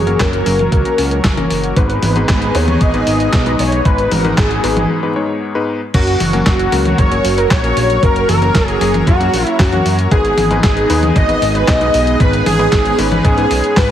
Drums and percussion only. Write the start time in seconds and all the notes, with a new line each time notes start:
0.07 closed hi-hat, high tom
0.20 kick, snare, clap, closed hi-hat
0.33 closed hi-hat
0.46 open hi-hat
0.59 closed hi-hat, high tom
0.72 kick, closed hi-hat
0.85 closed hi-hat
0.98 open hi-hat
1.11 closed hi-hat
1.24 kick, snare, clap, open hi-hat
1.37 closed hi-hat, high tom
1.50 open hi-hat
1.64 closed hi-hat
1.76 kick, closed hi-hat
1.90 closed hi-hat
2.02 open hi-hat, high tom
2.16 closed hi-hat
2.29 kick, snare, clap, closed hi-hat
2.42 closed hi-hat
2.55 open hi-hat
2.68 closed hi-hat, high tom
2.81 kick, closed hi-hat
2.94 closed hi-hat
3.07 open hi-hat
3.20 closed hi-hat
3.33 kick, snare, clap, closed hi-hat
3.46 closed hi-hat
3.59 open hi-hat
3.72 closed hi-hat
3.85 kick, closed hi-hat
3.98 closed hi-hat
4.11 open hi-hat, high tom
4.25 closed hi-hat, high tom
4.38 kick, snare, clap, closed hi-hat
4.51 closed hi-hat
4.64 open hi-hat
4.77 closed hi-hat, high tom
5.94 kick, closed hi-hat, crash
6.07 closed hi-hat
6.20 open hi-hat, high tom
6.33 closed hi-hat, high tom
6.46 kick, snare, clap, closed hi-hat
6.59 closed hi-hat
6.72 open hi-hat
6.86 closed hi-hat, high tom
6.98 kick, closed hi-hat
7.12 closed hi-hat
7.25 open hi-hat
7.38 closed hi-hat
7.51 kick, snare, clap, closed hi-hat
7.64 closed hi-hat
7.77 open hi-hat
7.90 closed hi-hat
8.03 kick, closed hi-hat
8.16 closed hi-hat
8.29 open hi-hat, high tom
8.42 closed hi-hat
8.55 kick, snare, clap, closed hi-hat
8.68 closed hi-hat
8.81 open hi-hat
8.94 closed hi-hat, high tom
9.07 kick, closed hi-hat
9.21 closed hi-hat
9.34 open hi-hat
9.47 closed hi-hat
9.59 kick, snare, clap, open hi-hat
9.73 closed hi-hat, high tom
9.86 open hi-hat
9.99 closed hi-hat
10.11 kick, closed hi-hat
10.25 closed hi-hat
10.38 open hi-hat, high tom
10.51 closed hi-hat, high tom
10.64 kick, snare, clap, closed hi-hat
10.77 closed hi-hat
10.90 open hi-hat
11.03 closed hi-hat, high tom
11.16 kick, closed hi-hat
11.29 closed hi-hat
11.42 open hi-hat
11.55 closed hi-hat
11.68 kick, snare, clap, closed hi-hat
11.81 closed hi-hat
11.94 open hi-hat
12.07 closed hi-hat
12.20 kick, closed hi-hat
12.33 closed hi-hat
12.46 open hi-hat, high tom
12.59 closed hi-hat
12.72 kick, snare, clap, closed hi-hat
12.85 closed hi-hat
12.99 open hi-hat
13.12 closed hi-hat, high tom
13.25 kick, closed hi-hat
13.38 closed hi-hat
13.51 open hi-hat
13.64 closed hi-hat
13.77 kick, snare, clap, open hi-hat